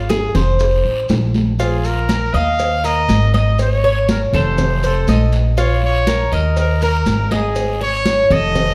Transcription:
Already playing: G#1
0.09 G#4, high bongo, high conga, short guiro, maracas
0.35 F1 C5, high bongo, high conga, low conga, short guiro, maracas
0.59 high bongo, high conga, long guiro, maracas
0.85 A1, high conga
1.09 A#1, high bongo, low bongo, high conga, short guiro, maracas
1.34 high bongo, high conga, short guiro, maracas
1.59 F4 G#4, cowbell, high conga, long guiro, maracas
1.84 A#4, high conga, maracas
2.09 A#4, cowbell, high conga, short guiro, maracas
2.34 D#2 D#5 F5, high conga, short guiro, maracas
2.59 cowbell, high conga, long guiro, maracas
2.84 A#4 D#5, cowbell, high conga, maracas
3.08 G#1, cowbell, high conga, short guiro, maracas
3.34 D#5, cowbell, high conga, short guiro, maracas
3.58 C#5, cowbell, high conga, long guiro, maracas
3.83 C#5, high conga
4.08 A#4, cowbell, high conga, short guiro, maracas
4.33 F1 A4 C5, high conga, low conga, short guiro, maracas
4.58 cowbell, high conga, low conga, long guiro, maracas
4.83 A4 C5, high conga, maracas
5.07 A#1 D#5, cowbell, high conga, short guiro, maracas
5.32 cowbell, short guiro, maracas
5.57 F4 C#5, cowbell, high conga, long guiro, maracas
5.83 C#5, high conga
6.07 A#4, cowbell, high conga, short guiro, maracas
6.32 D#2 A#4 D#5, high conga, short guiro, maracas
6.57 A#4, cowbell, high conga, long guiro, maracas
6.82 A#4, cowbell, high conga, maracas
7.06 G#1, cowbell, high conga, short guiro, maracas
7.31 G#4 D#5, cowbell, high conga, short guiro, maracas
7.55 cowbell, high conga, long guiro, maracas
7.81 C#5, high conga
8.05 cowbell, high conga, short guiro, maracas
8.30 F1 A4 D#5, high conga, low conga, short guiro, maracas
8.55 cowbell, high conga, low conga, long guiro, maracas

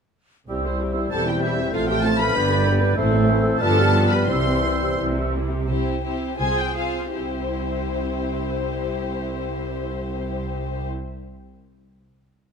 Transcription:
0.48 C2 G3 C4 E4 G4 C5 E6
0.65 E4 C5
0.81 C4 G4
0.97 E4 C5
1.11 E1 E2 C4 E4 G4 A4 A5 G6
1.27 C4 E4 G4 G5
1.43 E4 G4 E5
1.58 C4 E4
1.73 A1 A2 F3 A3 F4 F5 F6
1.89 C4 G4 A4 G5
2.04 A3 F4 A4 A5
2.19 C4 A4 B4 B5
2.35 G1 G2 D3 G3 B3 D4 G4 D5 G6
2.50 D4 B4
2.67 B3 G4
2.82 D4 B4
2.97 A1 A2 E3 A3 C4 E4 C5 E6
3.13 C4 A4
3.30 A3 E4
3.45 C4 A4
3.61 G1 G2 F3 G3 B3 D4 F4 A4 B4 A5 F6
3.78 B3 G4
3.95 D4 F4
4.11 B3 G4 B4 B5
4.28 C2 C3 E3 G3 C4 E4 C5 C6 E6
4.46 C4 G4
4.64 G3 E4
4.82 C4 G4
4.99 C2 C3 G3 E4
5.17 C4 G4
5.35 G3 E4
5.52 C4 G4
5.70 C2 C4 E4 G4 C5
6.04 C4 E4 G4 C5
6.39 C2 C4 F4 G#4 C5 G#5
6.59 G5
6.77 C4 F4 G#4 C5 F5
7.15 C2 C4 E4 G4 C5

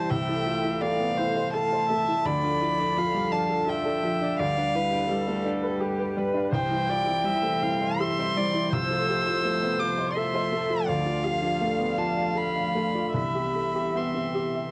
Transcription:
Already playing: E3 G3 A3 C4 E4 F4 G4 C5 G5 A5
0.09 C2 A3 A4 E5 G5
0.27 E4 A4
0.45 F4 A4
0.64 E4
0.81 A3 C5 D5 F5
0.99 B3 F5
1.17 E4 C5
1.36 C5
1.53 A4 F5 A5
1.72 C5
1.89 A3 A4 E5
2.07 E4 E5
2.25 D2 F3 D4 D5 B5
2.43 D4 F4
2.61 E4 F4
2.79 D4
2.96 F3 A4 F5
3.14 G3 D5
3.32 D4 A5
3.50 A4
3.67 F4 E5 G5
3.85 D4 A4
4.03 F3 F4
4.21 D4 D5
4.39 D2 G3 G4 B4 D5 F5
4.57 D4 B4
4.75 E4 B4
4.92 D4 G4
5.08 G3 A4 D5
5.27 A3 F5
5.45 D4 G4
5.62 B4
5.80 G4 B4
5.98 G4 B4
6.17 G3 B4
6.34 D4 F5
6.52 C2 E3 C4 C5 G5
6.70 E4
6.89 E4 F4 D5
7.06 C4 E4
7.24 G3 G4 E5
7.43 A3 C5
7.62 C4 E4 F5
7.80 C5
8.00 E4 G4 E5 C6
8.19 C4 C5
8.36 G3 E4 D5
8.54 E4 C5
8.72 C2 F3 A3 F4 C5 E6
8.90 F4 A4
9.09 G4 A4
9.27 F4
9.45 A3 C5
9.62 B3 E5
9.79 F4 D6
9.98 C5
10.14 A4 E5 C6
10.34 F4 C5
10.52 A3 A4
10.70 F4 E5
10.86 D2 D4 D5 F5
11.06 F4
11.24 F4 G4 F5
11.42 D4 F4
11.61 A3 A4
11.79 B3 D5
11.98 D4 F4 A5
12.17 F5
12.35 F4 A4 B5
12.55 D4 F5
12.75 A3 F4
12.95 F4 D5
13.14 C2 E3 B3 G4 E5 B5
13.34 G4 E5
13.55 A4
13.75 G4
13.95 B3 G4 C6
14.14 C4
14.34 G4
14.55 E5

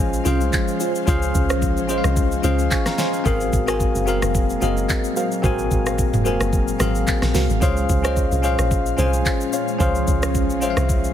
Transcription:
Already playing: A#1 F3 G#3 C#4 F4 G#4 C5 D#5 F5 G#5
0.13 shaker
0.24 C2 C#4 F4 G#4 C5 F5, shaker
0.41 shaker
0.53 kick, clap, shaker
0.68 shaker
0.80 C#4 F4 C5, shaker
0.95 shaker
1.06 C#2 C#4 F4 G#4 C5 F5, kick, shaker
1.22 shaker
1.35 C#2, kick, shaker
1.49 C#4 F4 C5, cross-stick, shaker
1.62 kick, shaker
1.77 A#1, shaker
1.88 C#4 F4 G#4 C5 D#5, shaker
1.98 F5
2.04 C2, cross-stick, shaker
2.17 kick, shaker
2.32 shaker
2.42 C#2 C#4 F4 G#4 C5 F5, shaker
2.59 shaker
2.71 G#5 C#6, kick, clap, shaker
2.86 F5 A#5, cross-stick, snare, shaker
2.98 C#4 F4 C5 D#5 G#5 C6, snare, shaker
3.13 C5 F5, shaker
3.24 G#1 A#2 F#3 A#3 C4 F#4 G#4 A#4 C5 F5, kick, shaker
3.41 shaker
3.53 G#1, kick, shaker
3.66 C4 F#4 G#4 A#4 C5 F5 G#5, cross-stick, shaker
3.80 kick, shaker
3.95 F#1, shaker
4.06 C4 F#4 G#4 A#4 C5 F5, shaker
4.22 F1, cross-stick, shaker
4.35 kick, shaker
4.50 shaker
4.60 F#1 C4 F#4 G#4 A#4 C5 D#5 F5, shaker
4.77 shaker
4.89 kick, clap, shaker
5.04 shaker
5.16 F#4 A#4 C5 F5, shaker
5.32 shaker
5.42 G#1 C4 F#4 G#4 A#4 C5 F5 G#5, kick, shaker
5.59 shaker
5.71 G#1, kick, shaker
5.86 F#4 A#4 C5 F5, cross-stick, shaker
5.98 kick, shaker
6.13 F1, mid tom, shaker
6.24 A#3 F#4 G#4 A#4 C5 F5 G#5, shaker
6.31 C4
6.41 F#1, cross-stick, shaker
6.53 kick, shaker
6.68 shaker
6.79 G#1 C4 F#4 G#4 A#4 C5 F5, cross-stick, shaker
6.95 shaker
7.07 kick, clap, shaker
7.22 A#1, cross-stick, snare, shaker
7.34 C2 F#4 A#4 C5 F5, snare, open hi-hat, shaker
7.50 G#1, shaker
7.60 C#2 F3 G#3 C#4 F4 G#4 C5 C#5 F5, kick, shaker
7.77 shaker
7.89 C#2, kick, shaker
8.03 C#4 F4 G#4 C5 C#5 D#5 F5, cross-stick, shaker
8.17 kick, shaker
8.32 C2, shaker
8.42 C#4 F4 G#4 C5 C#5 F5, shaker
8.59 A#1, cross-stick, shaker
8.71 kick, shaker
8.86 shaker
8.97 C2 C#4 F4 G#4 C5 C#5 F5 G#5, shaker
9.13 shaker
9.26 kick, clap, shaker
9.41 shaker
9.53 C5 C#5 F5, shaker
9.68 shaker
9.79 C#2 C#4 F4 G#4 C5 C#5 F5, kick, shaker
9.95 shaker
10.08 C#2, kick, shaker
10.22 C5 C#5 F5, cross-stick, shaker
10.35 kick, shaker
10.50 A#1, shaker
10.60 C#4 F4 G#4 C5 C#5 E5 F5, shaker
10.70 F5
10.77 C2, cross-stick, shaker
10.89 kick, shaker
11.04 shaker

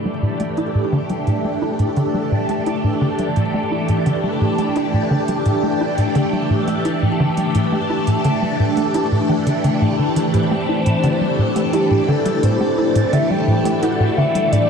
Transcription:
Already playing: E3 A3 D4 G4 A4
0.05 G3
0.23 A2
0.40 A3, closed hi-hat, low woodblock
0.57 E4, closed hi-hat
0.75 A2
0.92 D3, low woodblock
1.10 G3, closed hi-hat
1.27 A2, closed hi-hat
1.44 A3, low woodblock
1.62 E4
1.79 A2, closed hi-hat
1.96 D3, closed hi-hat, low woodblock
2.14 G3
2.32 A2
2.49 A3, closed hi-hat, low woodblock
2.66 E4, closed hi-hat
2.84 A2
3.01 D3, low woodblock
3.19 G3, closed hi-hat
3.36 A2, closed hi-hat
3.54 A3, low woodblock
3.71 E4
3.88 A2, closed hi-hat
4.06 D3, closed hi-hat, low woodblock
4.24 G3
4.41 A2
4.58 A3, closed hi-hat, low woodblock
4.76 E4, closed hi-hat
4.94 A2
5.11 D3, low woodblock
5.28 G3, closed hi-hat
5.46 A2, closed hi-hat
5.63 A3, low woodblock
5.81 E4
5.98 A2, closed hi-hat
6.15 D3, closed hi-hat, low woodblock
6.33 G3
6.50 A2
6.68 A3, closed hi-hat, low woodblock
6.85 E4, closed hi-hat
7.03 A2
7.20 D3, low woodblock
7.37 G3, closed hi-hat
7.55 A2, closed hi-hat
7.72 A3, low woodblock
7.90 E4
8.07 A2, closed hi-hat
8.24 D3, closed hi-hat, low woodblock
8.42 G3
8.60 A2
8.77 A3, closed hi-hat, low woodblock
8.94 E4, closed hi-hat
9.12 A2
9.29 E3, low woodblock
9.47 D3, closed hi-hat
9.64 D3, closed hi-hat
9.82 A2, low woodblock
9.99 D3
10.16 E3, closed hi-hat
10.34 A2 C5, closed hi-hat
10.51 A3, low woodblock
10.69 E4
10.86 A2, closed hi-hat
11.04 D3, closed hi-hat, low woodblock
11.21 G3
11.39 A2
11.56 A3, closed hi-hat, low woodblock
11.73 E4 G4, closed hi-hat
11.91 A2
12.08 D3 A4, low woodblock
12.26 G3, closed hi-hat
12.43 A2 C5, closed hi-hat
12.61 A3, low woodblock
12.78 E4
12.96 A2, closed hi-hat
13.13 D3 E5, closed hi-hat, low woodblock
13.30 G3 G5
13.48 A2
13.65 A3, closed hi-hat, low woodblock
13.82 E4 F#5, closed hi-hat
14.00 A2
14.17 D3 E5, low woodblock
14.35 G3, closed hi-hat
14.52 A2 D5, closed hi-hat

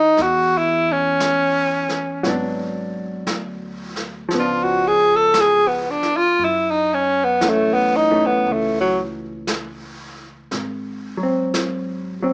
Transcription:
Already playing: A1 G#3 C#4 D#4
0.17 E2, brush sweep, snare
0.22 F#4
0.58 E4
0.92 C#4
1.20 brush sweep, snare, hi-hat pedal
1.89 snare
2.23 G#1 F#3 B3, brush sweep, snare
2.29 D4
3.27 D2, brush sweep, snare, hi-hat pedal
3.96 snare
4.29 C#2 F3, brush sweep, snare
4.35 B3
4.39 D4 F4
4.64 F#4
4.87 G#4
5.16 A4
5.34 brush sweep, snare, hi-hat pedal
5.40 G#4
5.68 B3
5.90 D4
6.03 muted upright bass stroke, snare
6.17 F4
6.37 F#2, brush sweep
6.44 E4
6.71 D#4
6.94 C#4
7.24 B3
7.41 E3 A3, brush sweep, snare, hi-hat pedal
7.46 A3 C#4
7.74 B3
7.96 D#4
8.11 E3 A3 C#4
8.26 B3
8.44 C#2, brush sweep
8.53 A3
8.80 F#3
9.47 brush sweep, snare, hi-hat pedal
10.51 G#1, brush sweep, snare
11.17 F#3
11.23 C4
11.54 brush sweep, snare, hi-hat pedal
12.22 F#3 C4

